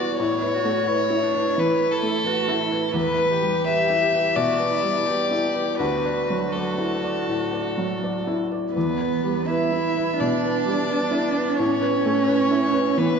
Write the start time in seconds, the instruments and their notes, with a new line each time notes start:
Already playing: felt piano B2 G3 E4 B4, cello F#4, violin D5
0.19 felt piano A2, cello E4, violin C#5
0.42 felt piano B4
0.54 cello F#4
0.65 felt piano A3
0.88 cello E4, felt piano B4
1.10 felt piano E4
1.22 cello D4
1.35 felt piano B4
1.56 felt piano E3, cello E4, violin B4
1.79 felt piano B4
1.91 violin A4
2.03 felt piano A3
2.25 cello F#4, felt piano B4
2.48 felt piano E4
2.60 cello E4
2.71 felt piano B4
2.93 felt piano E2, cello E4, violin B4
3.18 felt piano B4
3.31 cello G4
3.42 felt piano G3
3.66 felt piano B4, violin E5
3.90 felt piano E4
4.13 felt piano B4
4.36 felt piano B2, cello F#4, violin D5
4.59 felt piano B4
4.70 cello E4
4.83 felt piano G3
5.06 cello G4, felt piano B4
5.31 felt piano E4
5.54 felt piano B4
5.79 felt piano D2, cello F#4, violin B4
6.05 felt piano D5
6.30 felt piano F#3
6.53 violin A4, felt piano D5
6.78 felt piano E4
7.03 felt piano D5
7.28 felt piano A2
7.53 felt piano D5
7.78 felt piano F#3
8.03 felt piano D5
8.27 felt piano E4
8.52 felt piano D5
8.73 felt piano E2, cello B3, violin B4
9.01 felt piano B4
9.24 felt piano G3
9.47 cello E4, felt piano B4, violin E5
9.72 felt piano E4
9.97 felt piano B4
10.18 felt piano B2, cello D4, violin D5
10.44 felt piano B4
10.65 felt piano G3
10.90 felt piano B4
11.11 felt piano E4
11.36 felt piano B4
11.59 felt piano A2, cello C#4, violin C#5
11.81 felt piano B4
12.05 felt piano A3
12.28 felt piano B4
12.51 felt piano E4
12.73 felt piano B4
12.98 felt piano E3, cello B3, violin B4